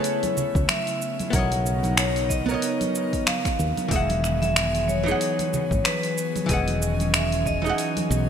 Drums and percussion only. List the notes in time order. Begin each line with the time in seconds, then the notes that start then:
0.04 open hi-hat, cabasa
0.23 open hi-hat, high conga, cabasa
0.37 muted conga, low conga, cabasa
0.55 kick, cabasa
0.69 finger snap, open hi-hat, high conga, cabasa
0.87 open hi-hat, cabasa
1.02 cabasa
1.19 open hi-hat, high conga, cabasa
1.33 kick, open hi-hat, cabasa
1.52 open hi-hat, muted conga, cabasa
1.66 cabasa
1.83 open hi-hat, high conga, cabasa
1.97 finger snap, open hi-hat, cabasa
2.16 open hi-hat, cabasa
2.30 kick, cabasa
2.49 cabasa
2.62 open hi-hat, cabasa
2.81 open hi-hat, high conga, cabasa
2.95 cabasa
3.13 kick, open hi-hat, cabasa
3.27 finger snap, open hi-hat, high conga, cabasa
3.45 finger snap, kick, open hi-hat, cabasa
3.59 muted conga, cabasa
3.77 open hi-hat, high conga, cabasa
3.91 kick, open hi-hat, cabasa
4.10 open hi-hat, muted conga
4.24 finger snap, cabasa
4.43 open hi-hat, high conga, cabasa
4.56 finger snap, open hi-hat, cabasa
4.75 open hi-hat, cabasa
4.88 high conga, cabasa
5.08 cabasa
5.21 open hi-hat, cabasa
5.39 open hi-hat, high conga, cabasa
5.53 muted conga, low conga, cabasa
5.71 kick, cabasa
5.85 finger snap, open hi-hat, high conga, cabasa
6.03 open hi-hat, cabasa
6.18 cabasa
6.36 open hi-hat, high conga, cabasa
6.49 kick, open hi-hat, cabasa
6.68 open hi-hat, muted conga
6.82 cabasa
7.00 open hi-hat, high conga, cabasa
7.14 finger snap, open hi-hat, cabasa
7.32 open hi-hat, cabasa
7.46 kick, cabasa
7.65 cabasa
7.78 open hi-hat, cabasa
7.97 open hi-hat, high conga, cabasa
8.11 cabasa